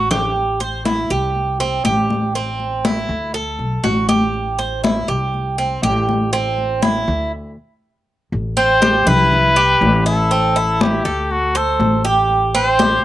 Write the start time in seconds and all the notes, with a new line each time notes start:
Already playing: A1 F#4
0.11 G4, low conga
0.36 high conga
0.60 C5, high conga
0.85 E4, high conga
1.10 C2 G4, high conga
1.35 high conga
1.60 C4, high conga
1.85 A1 G4, high conga
2.10 high conga
2.35 C4, high conga
2.60 high conga
2.85 E4, high conga
3.09 D2, high conga
3.34 A4, high conga
3.59 B1, high conga
3.84 A1 F#4, high conga
4.09 G4, high conga
4.34 high conga
4.59 C5, high conga
4.84 E4, high conga
5.08 C2 G4, high conga
5.34 high conga
5.58 C4, high conga
5.83 A1 G4, high conga
6.09 high conga
6.33 C4, high conga
6.58 high conga
6.82 E4, high conga
7.08 D2, high conga
8.32 A1, high conga
8.57 C4 C5, high conga
8.82 G4, high conga
9.06 C2 E4 B4, high conga, low conga
9.32 high conga, low conga
9.56 G4, high conga
9.81 A1, high conga
10.06 E4 A4
10.31 C4, high conga
10.56 E4, high conga
10.81 G4, high conga
11.05 D2 A4
11.31 F#4, high conga
11.55 A4 C5, high conga
11.79 A1, high conga
12.05 G4
12.30 high conga
12.54 C4 C5, high conga
12.79 G4, high conga